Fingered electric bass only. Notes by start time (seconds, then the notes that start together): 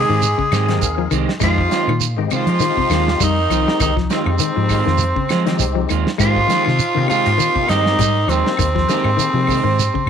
0.09 G#2
0.52 G#2
0.82 D#2
1.11 C2
1.41 F2
1.87 A#2
2.17 G#2
2.31 muted fingered electric bass stroke
2.47 F3
2.77 muted fingered electric bass stroke
2.90 D#2
3.21 F2
3.50 C2
3.81 C2
4.26 F2
4.57 G#2
4.87 F2
5.30 F3
5.60 C2
5.91 D#2
6.20 G#2
6.68 C3
6.97 C3
7.10 muted fingered electric bass stroke
7.27 G#2
7.56 muted fingered electric bass stroke
7.69 G2
7.99 G#2
8.27 D#2
8.59 D#2
9.04 G#2
9.34 C3
9.64 G#2
10.06 G#2